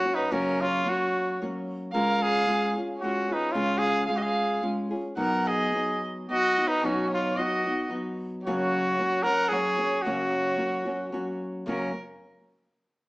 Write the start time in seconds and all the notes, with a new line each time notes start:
Already playing: F#4 C#5
0.05 F#3 A#3 C#4 F#4
0.14 D#4 B4
0.31 F#2 C#3 F#3 A#3 C#4 F#4 A#4
0.61 F4 C#5
0.85 F#3 A#3 C#4 F#4 C#5
1.41 F#3 A#3 C#4 F#4
1.93 C#3 G#3 C#4 F4 G#4 A#4 F5
2.21 G#4 F5
2.47 G#3 C#4 F4 G#4
2.76 C#4 F4 G#4
2.97 F#4 C#5
3.02 G#3 C#4 F4 G#4
3.28 C#4 F4 G#4 B4
3.33 D#4
3.49 F4 C#5
3.54 C#3 G#3 C#4 F4 G#4
3.77 G#4 F5
4.06 G#3 C#4 F4 G#4 F5
4.16 F#4 D#5
4.22 G#4 F5
4.62 G#3 C#4 F4 G#4
4.91 C#4 F4 G#4
5.17 B2 F#3 B3 D#4 F#4 A#4 F#5
5.47 G#4 D#5
5.72 F#3 B3 D#4 F#4
6.29 F#3 B3 D#4 F#4 D#5
6.56 B3 D#4 F#4
6.67 D#4 B4
6.83 B2 F#3 B3 C#4 D#4 F#4
7.11 F4 C#5
7.37 F#3 B3 D#4 F#4 D#5
7.66 B3 D#4 F#4
7.89 F#3 B3 D#4 F#4
8.42 F#4 C#5
8.47 F#2 C#3 F#3 A#3 C#4 F#4
8.98 F#3 A#3 C#4 F#4
9.23 F#3 A#3 C#4 F#4 A#4 F#5
9.49 F#3 A#3 C#4 F#4 G#4
9.53 C#5
9.77 F#3 A#3 C#4 F#4
10.02 F#2 F#4 C#5
10.06 C#3 F#3 A#3 C#4 F#4
10.57 F#3 A#3 C#4 F#4
10.85 F#3 A#3 C#4 F#4
11.12 F#3 A#3 C#4 F#4
11.66 F#2 C#3 F#3 A#3 C#4 F#4 A#4